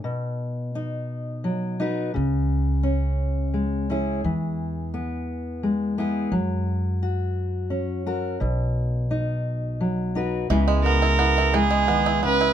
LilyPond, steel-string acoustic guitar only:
\new Staff \with { instrumentName = "Steel-string acoustic guitar" } { \time 3/4 \key cis \dorian \tempo 4 = 86 << { r4 dis'4. <dis' fis' b'>8 | r4 cis'4. <cis' e' gis'>8~ | <cis' e' gis'>4 b4. <b e' gis'>8 | r4 fis'4. <fis' ais'>8 |
r4 dis'4. <dis' fis' b'>8 | <gis b e' gis'>8 gis'8 e'8 r4. | } \\ { b,2 fis4 | cis2 gis4 | e2 gis4 | fis2 cis'4 |
b,2 fis4 | cis4. gis8 dis8 cis8 | } >> }